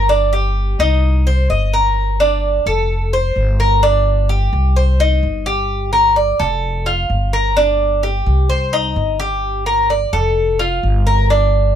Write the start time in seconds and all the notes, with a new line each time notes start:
Already playing: G1
0.09 D4
0.33 G4
0.79 C2 D#4
1.27 C5
1.50 G1 D#5
1.73 A#4
2.20 D4
2.66 F1 A4
3.13 C5
3.36 G1
3.60 A#4
3.83 D4
4.29 G4
4.53 C2
4.76 C5
5.00 D#4
5.23 G1
5.46 G4
5.93 A#4
6.16 D5
6.39 F1 A4
6.86 F4
7.10 G1
7.33 A#4
7.57 D4
8.03 G4
8.26 C2
8.50 C5
8.73 D#4
8.96 G1
9.20 G4
9.66 A#4
9.90 D5
10.13 F1 A4
10.59 F4
10.83 G1
11.07 A#4
11.30 D4